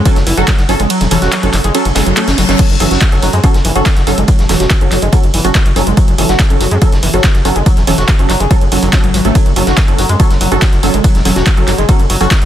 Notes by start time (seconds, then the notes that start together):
0.05 F#3 C#4 A4, kick, closed hi-hat, ride
0.16 F#1, snare, closed hi-hat
0.26 F#1 E3, closed hi-hat, open hi-hat
0.37 F#1 F#3 C#4 F#4 A4, closed hi-hat
0.48 F#3, kick, snare, clap, closed hi-hat, ride
0.58 F#1, snare, closed hi-hat
0.69 F#1 F#3 C#4 A4, closed hi-hat, open hi-hat
0.80 F#1 G#3, closed hi-hat
0.89 F#3, closed hi-hat, ride
1.00 E1, snare, closed hi-hat
1.10 E1 E3 F#3 C#4 A4, snare, closed hi-hat, open hi-hat
1.22 E1 F#4, snare, closed hi-hat
1.32 F#3, snare, clap, closed hi-hat, ride
1.43 F#1 F#3 C#4 A4, closed hi-hat
1.53 F#1, clap, closed hi-hat, open hi-hat
1.64 F#1 G#3, closed hi-hat
1.74 F#3 C#4 A4, closed hi-hat, ride, reverse cymbal
1.85 F#1, closed hi-hat
1.95 F#1 F#3 G#3 C#4 A4, snare, closed hi-hat, open hi-hat
2.07 F#1 F#3, closed hi-hat
2.17 F#3 A3 C#4 A4, clap, closed hi-hat, ride
2.27 F#1 C#4, snare, closed hi-hat
2.38 F#1 F#3, closed hi-hat, open hi-hat
2.49 F#1 F#3 C#4 A4, snare, closed hi-hat
2.59 F#3, kick, closed hi-hat, crash, ride
2.70 F#1, closed hi-hat
2.80 F#1 E3 F#3 C#4 A4, closed hi-hat, open hi-hat
2.91 F#1 F#4, snare, closed hi-hat
3.01 kick, snare, clap, closed hi-hat, ride
3.12 F#1 F#3 C#4 A4, closed hi-hat
3.23 F#1 F#3, closed hi-hat, open hi-hat
3.33 F#2 G#3, closed hi-hat
3.43 F#3 C#4 A4, kick, closed hi-hat, ride
3.54 F#1, snare, closed hi-hat
3.65 F#1 E3, closed hi-hat, open hi-hat
3.76 F#1 F#3 C#4 F#4 A4, closed hi-hat
3.86 kick, snare, clap, closed hi-hat, ride
3.97 F#1, snare, closed hi-hat
4.07 F#1 F#3 C#4 A4, closed hi-hat, open hi-hat
4.18 F#1 G#3, closed hi-hat
4.27 F#3, kick, closed hi-hat, ride
4.39 E1, snare, closed hi-hat
4.49 E1 E3 F#3 C#4 A4, snare, closed hi-hat, open hi-hat
4.60 E1 F#4, snare, closed hi-hat
4.70 kick, snare, clap, closed hi-hat, ride
4.81 F#1 F#3 C#4 A4, closed hi-hat
4.92 F#1 F#3, clap, closed hi-hat, open hi-hat
5.02 F#1 G#3, closed hi-hat
5.12 F#3 C#4 A4, kick, closed hi-hat, ride
5.24 F#1, closed hi-hat
5.34 F#1 E3, open hi-hat
5.44 F#1 F#3 C#4 F#4 A4, closed hi-hat
5.54 kick, snare, clap, closed hi-hat, ride
5.66 F#1, closed hi-hat
5.76 F#1 F#3 C#4 A4, closed hi-hat, open hi-hat
5.87 F#1 G#3, closed hi-hat
5.97 F#3, kick, closed hi-hat, ride
6.08 F#1, closed hi-hat
6.18 F#1 E3 F#3 C#4 A4, closed hi-hat, open hi-hat
6.29 F#1 F#4, snare, closed hi-hat
6.39 kick, snare, clap, closed hi-hat, ride
6.50 F#1 F#3 C#4 A4, closed hi-hat
6.61 F#1 F#3, closed hi-hat, open hi-hat
6.71 F#2 G#3, closed hi-hat
6.82 F#3 C#4 A4, kick, closed hi-hat, ride
6.92 F#1, snare, closed hi-hat
7.03 F#1 E3, closed hi-hat, open hi-hat
7.14 F#1 F#3 C#4 F#4 A4, closed hi-hat
7.24 kick, snare, clap, closed hi-hat, ride
7.35 F#1, snare, closed hi-hat
7.45 F#1 F#3 C#4 A4, closed hi-hat, open hi-hat
7.56 F#1 G#3, closed hi-hat
7.66 F#3, kick, closed hi-hat, ride
7.77 E1, snare, closed hi-hat
7.87 E1 E3 F#3 C#4 A4, snare, closed hi-hat, open hi-hat
7.98 E1 F#4, snare, closed hi-hat
8.08 kick, snare, clap, closed hi-hat, ride
8.19 F#1 F#3 C#4 A4, closed hi-hat
8.30 F#1 F#3, clap, closed hi-hat, open hi-hat
8.40 F#1 G#3, closed hi-hat
8.51 F#3 C#4 A4, kick, closed hi-hat, ride
8.61 F#1, closed hi-hat
8.72 F#1 F#3 C#4 A4, open hi-hat
8.83 F#1 F#3, closed hi-hat
8.93 F#3 C#4 A4, kick, snare, clap, closed hi-hat, ride
9.03 G#1 F#3, closed hi-hat
9.14 G#1 F#3, closed hi-hat, open hi-hat
9.25 G#1 F#3 A3 C#4 A4, closed hi-hat
9.35 F#3, kick, closed hi-hat, ride
9.46 F#1, closed hi-hat
9.56 F#1 F#3 C#4 A4, closed hi-hat, open hi-hat
9.67 F#1 F#4, snare, closed hi-hat
9.77 kick, snare, clap, closed hi-hat, ride
9.88 F#1 F#3 C#4 A4, closed hi-hat
9.98 F#1 F#3, closed hi-hat, open hi-hat
10.09 F#2 G#3, closed hi-hat
10.20 F#3 C#4 A4, kick, closed hi-hat, ride
10.30 F#1, snare, closed hi-hat
10.41 F#1 F#3, closed hi-hat, open hi-hat
10.52 F#1 F#3 C#4 F#4 A4, closed hi-hat
10.61 kick, snare, clap, closed hi-hat, ride
10.73 F#1, snare, closed hi-hat
10.83 F#1 F#3 C#4 A4, closed hi-hat, open hi-hat
10.94 F#1 G#3, closed hi-hat
11.04 F#3, kick, closed hi-hat, ride
11.15 E1, snare, closed hi-hat
11.25 E1 F#3 C#4 A4, snare, closed hi-hat, open hi-hat
11.36 E1 F#4, snare, closed hi-hat
11.46 kick, snare, clap, closed hi-hat, ride
11.57 F#1 F#3 C#4 A4, closed hi-hat
11.67 F#1 F#3, clap, closed hi-hat, open hi-hat
11.78 F#1 G#3, closed hi-hat
11.89 F#3 C#4 A4, kick, closed hi-hat, ride
11.99 F#1, closed hi-hat
12.10 F#1 F#3, open hi-hat
12.21 F#1 F#3 C#4 F#4 A4, closed hi-hat
12.31 kick, snare, clap, closed hi-hat, ride
12.42 F#1, closed hi-hat